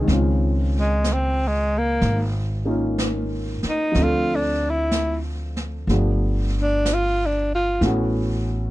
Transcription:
Already playing: grand piano F#4 G#4
0.01 grand piano D#3 G#3
0.07 upright bass C#2, grand piano C#3 C4, brush sweep, snare
0.13 grand piano F4
0.80 tenor saxophone G#3
1.04 brush sweep, snare, hi-hat pedal
1.13 tenor saxophone C4
1.48 tenor saxophone G#3
1.78 tenor saxophone A#3
2.01 upright bass G#1, brush sweep, snare
2.65 grand piano A#3 C#4 D#4 F4
2.98 brush sweep, snare, hi-hat pedal
3.63 muted upright bass stroke, snare
3.69 tenor saxophone D#4
3.92 upright bass D2, grand piano F3 A3, brush sweep, snare
3.97 grand piano C4 D4
4.03 tenor saxophone F4, grand piano A4
4.35 tenor saxophone D4
4.70 tenor saxophone E4
4.91 brush sweep, snare, hi-hat pedal
5.56 snare
5.87 upright bass G1, grand piano F3 A3 B3 D4 G4, brush sweep, snare
6.62 tenor saxophone D4
6.86 brush sweep, snare, hi-hat pedal
6.94 tenor saxophone F4
7.26 tenor saxophone D4
7.55 tenor saxophone F4
7.81 upright bass A1, grand piano E3 A3 B3 C#4, brush sweep, snare
7.86 grand piano F#4

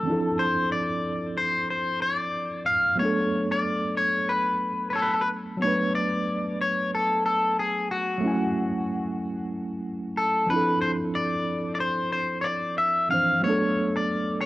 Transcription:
Already playing: clean electric guitar A4
0.03 tine electric piano E3 C4
0.07 tine electric piano F3 D4 E4
0.12 tine electric piano A4
0.39 clean electric guitar C5
0.72 clean electric guitar D5
1.37 clean electric guitar C5
1.70 clean electric guitar C5
2.02 clean electric guitar D5
2.66 clean electric guitar F5
2.96 tine electric piano F#3 B3, clean electric guitar C#5
3.00 tine electric piano A3 D4
3.05 tine electric piano A4
3.52 clean electric guitar D5
3.97 clean electric guitar C#5
4.29 clean electric guitar B4
4.90 clean electric guitar B4 C#5
4.95 clean electric guitar A4
5.02 clean electric guitar B4
5.13 clean electric guitar A4
5.21 clean electric guitar B4
5.57 tine electric piano F#3 B3
5.62 tine electric piano A3 D4, clean electric guitar C#5
5.67 tine electric piano B4
5.95 clean electric guitar D5
6.61 clean electric guitar C#5
6.95 clean electric guitar A4
7.26 clean electric guitar A4
7.59 clean electric guitar G#4
7.91 clean electric guitar F#4
8.18 tine electric piano F#3 A3
8.23 tine electric piano C#4 E4
8.28 tine electric piano G#5
10.17 clean electric guitar A4
10.47 tine electric piano F3 C4, clean electric guitar B4
10.51 tine electric piano D4 E4
10.56 tine electric piano A4
10.81 clean electric guitar C5
11.15 clean electric guitar D5
11.75 clean electric guitar D5
11.80 clean electric guitar C5
12.12 clean electric guitar C5
12.41 clean electric guitar C#5 D5
12.78 clean electric guitar E5
13.09 tine electric piano E3 F3 C4 D4, clean electric guitar F5
13.14 tine electric piano C5
13.40 tine electric piano F#3 B3, clean electric guitar C#5
13.45 tine electric piano A3 D4
13.50 tine electric piano A4
13.97 clean electric guitar D5
14.41 clean electric guitar C#5

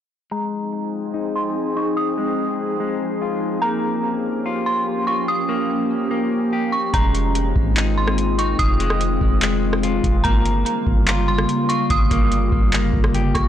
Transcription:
0.31 ambient pad F3 C4 D#4 G#4, clean electric guitar G#3, synth bell A#5
1.14 clean electric guitar D#4
1.36 synth bell C6
1.76 clean electric guitar D#4, synth bell C#6
1.97 synth bell D#6
2.18 clean electric guitar G#3
2.80 clean electric guitar G#3
3.22 clean electric guitar F4
3.62 clean electric guitar A#3, ambient pad A#3 C#4 G4, synth bell A#5
4.46 clean electric guitar F4
4.66 synth bell C6
5.07 clean electric guitar F4, synth bell C#6
5.28 synth bell D#6
5.49 clean electric guitar A#3
6.11 clean electric guitar A#3
6.53 clean electric guitar G4
6.72 synth bell C#6
6.93 808-style bass F1, ambient pad D#3 G#3 C4 F4, clean electric guitar G#3, synth bell A#5, kick, closed hi-hat
7.15 closed hi-hat
7.35 closed hi-hat
7.56 808-style bass G#1, kick
7.76 clean electric guitar D#4, clap, closed hi-hat
7.98 synth bell C6
8.07 cross-stick
8.18 closed hi-hat
8.38 clean electric guitar D#4, synth bell C#6, closed hi-hat
8.59 808-style bass F1, synth bell D#6, kick, closed hi-hat
8.80 clean electric guitar G#3, closed hi-hat
8.90 cross-stick
9.01 closed hi-hat
9.21 808-style bass F1, kick
9.42 clean electric guitar G#3, clap, closed hi-hat
9.73 cross-stick
9.83 clean electric guitar F4, closed hi-hat
10.04 808-style bass F1, kick, closed hi-hat
10.24 808-style bass G1, ambient pad C#3 G3 A#3, clean electric guitar A#3, synth bell A#5, kick, closed hi-hat
10.46 closed hi-hat
10.66 closed hi-hat
10.87 808-style bass G1, kick
11.08 clean electric guitar F4, clap, closed hi-hat
11.28 synth bell C6
11.38 cross-stick
11.49 closed hi-hat
11.69 clean electric guitar F4, synth bell C#6, closed hi-hat
11.90 808-style bass G1, synth bell D#6, kick, closed hi-hat
12.11 808-style bass G1, clean electric guitar A#3, kick, closed hi-hat
12.32 closed hi-hat
12.52 808-style bass G1, kick
12.73 clean electric guitar A#3, clap, closed hi-hat
12.94 808-style bass G1, kick
13.04 cross-stick
13.14 clean electric guitar G4, closed hi-hat
13.35 808-style bass G1, synth bell C#6, kick, cross-stick, closed hi-hat

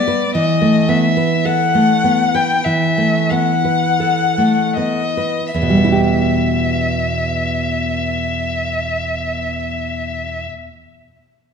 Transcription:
Already playing: nylon-string guitar B3, violin D5
0.08 nylon-string guitar B4
0.35 nylon-string guitar E3, violin D#5
0.61 nylon-string guitar A3
0.89 nylon-string guitar B3, violin E5
1.17 nylon-string guitar B4
1.45 nylon-string guitar A4, violin F#5
1.75 nylon-string guitar A3
2.04 nylon-string guitar B3
2.35 nylon-string guitar B4, violin G5
2.65 nylon-string guitar E3, violin E5
2.98 nylon-string guitar A3
3.30 nylon-string guitar B3, violin F#5
3.65 nylon-string guitar B4
4.00 nylon-string guitar A4
4.38 nylon-string guitar A3
4.77 nylon-string guitar B3, violin D#5
5.17 nylon-string guitar B4
5.54 nylon-string guitar E2, violin E5
5.62 nylon-string guitar B2
5.70 nylon-string guitar G3
5.77 nylon-string guitar B3
5.84 nylon-string guitar E4
5.92 nylon-string guitar G4

